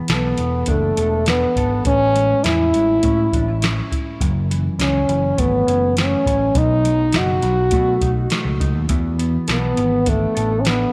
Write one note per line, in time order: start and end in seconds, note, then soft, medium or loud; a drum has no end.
0.00 2.15 E3 medium
0.00 0.37 B3 medium
0.08 0.33 B1 medium
0.08 0.97 A4 medium
0.08 snare loud
0.08 closed hi-hat medium
0.13 0.71 B3 medium
0.38 0.62 E1 medium
0.38 1.91 B3 medium
0.38 closed hi-hat medium
0.66 0.91 F#1 medium
0.66 1.30 A3 medium
0.66 1.25 D4 medium
0.66 kick medium
0.66 closed hi-hat medium
0.97 1.44 E1 medium
0.97 1.57 A4 medium
0.97 closed hi-hat medium
1.26 1.86 B3 medium
1.26 1.91 D4 medium
1.26 snare loud
1.26 closed hi-hat medium
1.56 1.79 G#1 medium
1.56 2.18 A4 medium
1.56 kick medium
1.56 closed hi-hat medium
1.85 2.32 A1 medium
1.85 4.20 A2 medium
1.85 2.45 C#4 loud
1.85 kick loud
1.85 closed hi-hat medium
2.15 2.74 G#3 medium
2.15 closed hi-hat medium
2.44 2.74 E2 medium
2.44 3.91 E4 medium
2.44 3.33 E4 medium
2.44 snare loud
2.44 closed hi-hat medium
2.74 2.97 A1 medium
2.74 4.27 G#3 medium
2.74 closed hi-hat medium
3.03 3.26 A2 loud
3.03 3.62 C#4 medium
3.03 kick medium
3.03 closed hi-hat medium
3.33 3.79 A1 medium
3.33 3.48 D4 medium
3.33 kick medium
3.33 closed hi-hat medium
3.48 3.91 E4 medium
3.62 4.80 C#4 medium
3.62 snare loud
3.62 closed hi-hat medium
3.92 4.79 E4 medium
3.92 kick medium
3.92 closed hi-hat medium
4.21 4.67 F#1 loud
4.21 6.55 F#2 medium
4.21 kick loud
4.21 closed hi-hat medium
4.51 5.07 E3 medium
4.51 closed hi-hat medium
4.79 5.02 C#2 medium
4.79 5.66 C#4 medium
4.79 5.41 C#4 medium
4.79 snare loud
4.79 closed hi-hat medium
5.08 5.32 F#1 medium
5.08 6.61 E3 medium
5.08 closed hi-hat medium
5.38 5.61 G#1 medium
5.38 5.97 A3 medium
5.38 5.97 B3 medium
5.38 kick medium
5.38 closed hi-hat medium
5.67 6.14 F#1 medium
5.67 6.25 C#4 medium
5.67 closed hi-hat medium
5.97 7.17 A3 medium
5.97 6.59 C#4 medium
5.97 snare medium
5.97 closed hi-hat medium
6.26 6.50 A1 medium
6.26 6.61 C#4 medium
6.26 kick medium
6.26 closed hi-hat medium
6.55 7.15 B1 loud
6.55 8.90 B2 medium
6.55 7.19 D#4 loud
6.55 kick loud
6.55 closed hi-hat medium
6.85 7.42 F#3 medium
6.85 closed hi-hat medium
7.12 7.37 F#1 medium
7.12 8.01 D#4 medium
7.12 snare loud
7.12 closed hi-hat medium
7.17 8.62 F#4 medium
7.42 7.74 B1 medium
7.42 8.89 F#3 medium
7.42 snare soft
7.42 closed hi-hat medium
7.71 7.96 B2 medium
7.71 8.30 A3 medium
7.71 kick medium
7.71 closed hi-hat medium
8.01 8.25 B1 medium
8.01 8.59 D#4 medium
8.01 kick medium
8.01 closed hi-hat medium
8.30 9.18 A3 medium
8.30 snare loud
8.30 closed hi-hat medium
8.45 8.57 C#2 medium
8.60 8.72 C#2 medium
8.60 8.95 D#4 medium
8.60 kick medium
8.60 closed hi-hat medium
8.75 8.87 D#2 medium
8.89 9.36 E2 loud
8.89 10.93 E3 medium
8.89 kick loud
8.89 closed hi-hat medium
9.19 9.75 B3 medium
9.19 closed hi-hat medium
9.48 9.72 B1 medium
9.48 10.11 B3 medium
9.48 10.35 A4 medium
9.48 snare medium
9.48 closed hi-hat medium
9.76 10.25 G#1 medium
9.76 10.93 B3 medium
9.76 closed hi-hat medium
10.06 10.62 A3 medium
10.06 10.63 D4 medium
10.06 kick medium
10.06 closed hi-hat medium
10.35 10.84 A1 medium
10.35 10.93 A4 medium
10.35 closed hi-hat medium
10.60 10.69 C#4 medium
10.65 10.93 B3 medium
10.65 10.93 D4 medium
10.65 snare medium
10.65 closed hi-hat medium